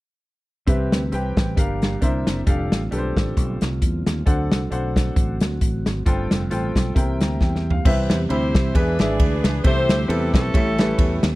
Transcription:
0.67 fingered electric bass C2, grand piano C3 C4 G4 B4 E5, tonewheel organ E3 G3 C4 G4 B4, kick, closed hi-hat
0.92 fingered electric bass D2, snare, closed hi-hat
1.12 fingered electric bass C2, grand piano C4 G4 B4 G5, closed hi-hat
1.37 fingered electric bass A1, kick, snare, closed hi-hat
1.56 fingered electric bass G1, grand piano G2 D4 G4 A#4 F5, tonewheel organ F3 A#3 D4, kick, closed hi-hat
1.82 snare, closed hi-hat
2.01 fingered electric bass C2, grand piano C3 D4 A#4 C5 E5, tonewheel organ D3 C4 E4, kick, closed hi-hat
2.27 fingered electric bass F#1, snare, closed hi-hat
2.46 fingered electric bass F1, tonewheel organ G3 A3 F4, grand piano D4 G4 A4 F5, kick, closed hi-hat
2.72 fingered electric bass A1, snare, closed hi-hat
2.91 fingered electric bass B1, grand piano D4 G4 A4 B4, closed hi-hat
2.98 grand piano C5
3.16 fingered electric bass A1, kick, snare, closed hi-hat
3.37 fingered electric bass B1, kick, closed hi-hat
3.61 fingered electric bass C2, snare, closed hi-hat
3.82 fingered electric bass E2, kick, closed hi-hat
4.07 fingered electric bass D#2, snare, closed hi-hat
4.26 fingered electric bass D2, grand piano D3 D4 A4 C5 F#5, tonewheel organ F#3 C4 F#4, kick, closed hi-hat
4.52 fingered electric bass C2, snare, closed hi-hat
4.71 fingered electric bass B1, grand piano D4 A4 C5 F#5, closed hi-hat
4.96 kick, snare, closed hi-hat
5.16 fingered electric bass A1, kick, closed hi-hat
5.41 fingered electric bass D2, snare, closed hi-hat
5.61 fingered electric bass A1, kick, closed hi-hat
5.86 fingered electric bass G#1, snare, closed hi-hat
6.06 fingered electric bass G1, grand piano G2 F4 A4 C5 G5, tonewheel organ G3 C4 F4, kick, closed hi-hat
6.31 fingered electric bass F1, snare, closed hi-hat
6.51 fingered electric bass A1, grand piano F4 A4 C5 G5, closed hi-hat
6.75 fingered electric bass B1, kick, snare, closed hi-hat
6.95 fingered electric bass C2, grand piano C3 E4 A#4 C5 G5, tonewheel organ E3 A#3 G4, kick, closed hi-hat
7.21 fingered electric bass D2, grand piano A#5, snare, closed hi-hat
7.41 fingered electric bass E2, grand piano G5, kick, snare
7.56 snare
7.70 grand piano F5, floor tom
7.85 fingered electric bass C2, grand piano C3 C4 E4 G4 B4 E5, tonewheel organ E3 G3 C4 G4, kick, crash
8.10 fingered electric bass E2, snare, ride bell
8.29 fingered electric bass D2, grand piano C4 E4 G4 E5 B5, saxophone section E4 G4 C5, ride bell
8.55 fingered electric bass C2, kick, snare, ride bell
8.74 fingered electric bass E2, grand piano E3 D4 E4 G#4 B4 E5, tonewheel organ G#3 D4 G#4, saxophone section D4 G#4 B4, kick, ride bell
8.98 fingered electric bass G#1, grand piano D4 E4 G#4 B4 E5, saxophone section G#4 B4 D5, snare, ride bell
9.20 fingered electric bass D2, kick, ride bell
9.44 fingered electric bass C#2, snare, ride bell
9.64 fingered electric bass C2, grand piano C3 C4 E4 G4 A4 E5, tonewheel organ G3 A3 C4 G4, saxophone section E4 G4 C5, kick, ride bell
9.89 fingered electric bass D2, snare, ride bell
10.08 fingered electric bass E2, grand piano C4 E4 G4 A4 B4, saxophone section A4, ride bell
10.34 fingered electric bass B1, saxophone section C#4 E4 A4, kick, snare, ride bell
10.53 fingered electric bass A1, grand piano A2 C#4 E4 G4 A4 E5, tonewheel organ A3 C#4, kick, ride bell
10.78 grand piano C#4 E4 G4 A4 B4, snare, ride bell
10.99 fingered electric bass E2, kick, ride bell
11.23 fingered electric bass D#2, snare, ride bell

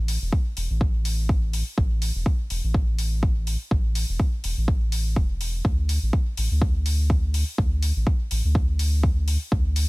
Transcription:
Already playing: sub bass A1
0.08 open hi-hat
0.22 sub bass E1
0.32 kick
0.57 sub bass E1, open hi-hat
0.70 sub bass A1
0.81 kick
1.05 open hi-hat
1.29 kick
1.53 open hi-hat
1.78 sub bass A1, kick
2.02 open hi-hat
2.15 sub bass E1
2.26 kick
2.50 sub bass E1, open hi-hat
2.64 sub bass A1
2.74 kick
2.99 open hi-hat
3.23 kick
3.47 open hi-hat
3.71 sub bass A1, kick
3.95 open hi-hat
4.09 sub bass E1
4.20 kick
4.44 sub bass E1, open hi-hat
4.57 sub bass A1
4.68 kick
4.92 open hi-hat
5.16 sub bass E1, kick
5.41 open hi-hat
5.65 sub bass D2, kick
5.89 open hi-hat
6.02 sub bass A1
6.13 kick
6.37 sub bass A1, open hi-hat
6.51 sub bass D2
6.62 kick
6.86 open hi-hat
7.10 kick
7.34 open hi-hat
7.58 sub bass D2, kick
7.83 open hi-hat
7.96 sub bass A1
8.07 kick
8.31 sub bass A1, open hi-hat
8.44 sub bass D2
8.55 kick
8.79 open hi-hat
9.03 kick
9.28 open hi-hat
9.52 sub bass D2, kick
9.76 open hi-hat

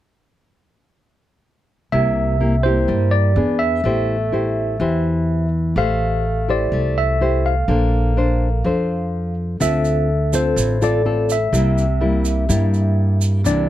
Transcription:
1.92 upright bass C2, nylon-string guitar C3 A#3 E4 G4, tine electric piano E5
2.41 nylon-string guitar A#3 E4 G4
2.63 nylon-string guitar A#3 E4 G4, tine electric piano C5
2.88 upright bass G2, nylon-string guitar G3
3.11 tine electric piano D5
3.36 upright bass E2, nylon-string guitar B3 D4 G#4
3.59 tine electric piano E5
3.84 upright bass A1, nylon-string guitar A3 E4 G4 C5
4.32 nylon-string guitar E4 G4 C5
4.80 upright bass E2, nylon-string guitar E3 E4 G4 C5
5.76 upright bass A1, nylon-string guitar A3 G4 C5, tine electric piano F5
6.48 nylon-string guitar E4 G4 C5, tine electric piano D5
6.72 upright bass C2, nylon-string guitar A3
6.98 tine electric piano E5
7.21 nylon-string guitar E4 G4 C5
7.46 tine electric piano F5
7.68 upright bass A#1, nylon-string guitar A#3 D4 A4 C5
8.17 nylon-string guitar D4 A4 C5
8.64 upright bass F2, nylon-string guitar F3 D4 A4 C5
9.60 upright bass D2, nylon-string guitar D3 C4 F4 A4, tine electric piano E5, shaker
9.85 shaker
10.33 nylon-string guitar C4 F4 A4, tine electric piano C5, shaker
10.56 upright bass A1, nylon-string guitar A2, shaker
10.81 nylon-string guitar C4 F4 A4, tine electric piano D5, shaker
11.05 nylon-string guitar C4 F4 A4
11.30 tine electric piano E5, shaker
11.53 upright bass C2, nylon-string guitar C3 G3 A#3 E4, shaker
11.78 shaker
12.01 nylon-string guitar G3 A#3 E4
12.25 shaker
12.49 nylon-string guitar G2 G3 A#3 E4, upright bass G2, shaker
12.74 shaker
13.21 shaker
13.44 upright bass C2, nylon-string guitar C3 E3 A#3 D4, tine electric piano D5, shaker

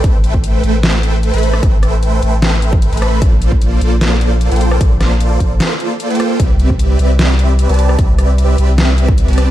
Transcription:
0.04 sub bass A1, supersaw synth A3 A4 C5 E5, kick, closed hi-hat
0.24 closed hi-hat
0.34 kick
0.44 closed hi-hat
0.64 sub bass A1, supersaw synth A3 A4 B4 C5 E5 G5, closed hi-hat
0.83 snare, closed hi-hat
1.03 closed hi-hat
1.23 closed hi-hat
1.34 sub bass A1, supersaw synth A3 A4 B4 C5 E5 B5, closed hi-hat
1.38 closed hi-hat
1.43 closed hi-hat
1.53 cross-stick
1.63 sub bass A1, kick, closed hi-hat
1.83 cross-stick, closed hi-hat
2.03 closed hi-hat
2.22 sub bass A1, supersaw synth A3 A4 B4 C5 E5 G5, closed hi-hat
2.42 snare, closed hi-hat
2.62 closed hi-hat
2.73 kick
2.82 closed hi-hat
2.92 sub bass A1, supersaw synth A3 A4 B4 C5 E5 B5, closed hi-hat
2.97 closed hi-hat
3.02 cross-stick, closed hi-hat
3.22 sub bass A#1, supersaw synth A#3 F4 D5, kick, closed hi-hat
3.42 closed hi-hat
3.52 kick
3.62 closed hi-hat
3.81 sub bass A#1, supersaw synth A#3 F4 A4 C5 D5, closed hi-hat
4.01 snare, closed hi-hat
4.21 closed hi-hat
4.41 closed hi-hat
4.51 sub bass A#1, supersaw synth A#3 F4 A4 C5 G5, closed hi-hat
4.56 closed hi-hat
4.61 closed hi-hat
4.71 cross-stick
4.81 sub bass A#1, supersaw synth A#3 A4 C5 D5, kick, closed hi-hat
5.01 cross-stick, snare, closed hi-hat
5.20 closed hi-hat
5.40 sub bass A#1, supersaw synth A#3 F4 A4 C5 D5, kick, closed hi-hat
5.60 snare, closed hi-hat
5.80 closed hi-hat
6.00 closed hi-hat
6.10 supersaw synth A#3 F4 A4 C5 G5, closed hi-hat
6.15 closed hi-hat
6.20 cross-stick, closed hi-hat
6.40 sub bass C2, kick, closed hi-hat
6.60 closed hi-hat
6.70 kick
6.79 closed hi-hat
6.99 sub bass C2, supersaw synth C4 G4 B4 D5 E5, closed hi-hat
7.19 snare, closed hi-hat
7.39 closed hi-hat
7.59 closed hi-hat
7.69 sub bass C2, supersaw synth C4 G4 B4 D5 A5, closed hi-hat
7.74 closed hi-hat
7.79 closed hi-hat
7.89 cross-stick
7.99 sub bass C2, supersaw synth C4 G4 B4 D5 E5, kick, closed hi-hat
8.18 cross-stick, closed hi-hat
8.38 closed hi-hat
8.58 sub bass C2, supersaw synth C4 G4 B4 D5 E5, closed hi-hat
8.78 snare, closed hi-hat
8.98 closed hi-hat
9.08 kick
9.18 closed hi-hat
9.28 sub bass C2, supersaw synth C4 G4 B4 D5 A5, closed hi-hat
9.33 closed hi-hat
9.38 cross-stick, closed hi-hat

